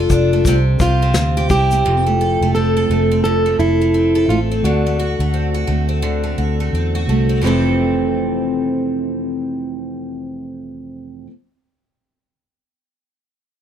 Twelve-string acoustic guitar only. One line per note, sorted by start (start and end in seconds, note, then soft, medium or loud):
0.00 0.54 F2 medium
0.00 0.32 A3 medium
0.00 0.10 D4 medium
0.00 0.54 F4 medium
0.12 0.54 D4 medium
0.33 0.54 A3 medium
0.47 1.94 C3 medium
0.81 1.36 G4 medium
1.02 1.72 C4 medium
1.37 1.93 G4 medium
1.51 2.55 E4 medium
1.73 2.06 C4 medium
1.86 3.24 F2 medium
2.06 2.42 A3 medium
2.21 2.76 A4 medium
2.42 2.90 A3 medium
2.56 3.11 C4 soft
2.77 3.59 A4 medium
2.91 3.45 A3 medium
3.11 3.94 C4 medium
3.25 4.73 F2 medium
3.46 3.81 A3 medium
3.60 4.15 A4 medium
3.81 4.30 A3 medium
3.94 4.51 C4 soft
4.15 4.99 A4 medium
4.30 4.86 A3 medium
4.51 5.02 C4 medium
4.65 6.01 D3 medium
4.86 5.20 A3 soft
4.99 5.53 F#4 medium
5.20 5.67 A3 medium
5.34 5.88 C4 soft
5.54 6.37 F#4 medium
5.67 6.23 A3 soft
5.89 6.74 C4 soft
6.02 7.42 D3 medium
6.24 6.60 A3 soft
6.38 6.94 F#4 soft
6.60 7.09 A3 soft
6.75 7.29 C4 soft
6.95 7.47 F#4 medium
7.09 7.45 A3 soft
7.29 7.46 C4 soft
7.41 11.27 F2 medium
7.41 11.28 C3 medium
7.41 11.29 E3 medium
7.41 11.30 A3 medium
7.46 11.31 C4 medium
7.46 11.32 A4 medium